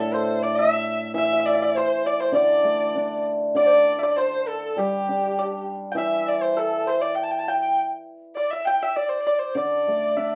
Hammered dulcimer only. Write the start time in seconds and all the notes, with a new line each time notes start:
Already playing: A2 D3
1.14 E3
2.32 D3
2.64 A3
2.95 D4
3.55 D3
4.77 G3
5.09 D4
5.95 E3
9.55 D3
9.88 A3
10.17 D4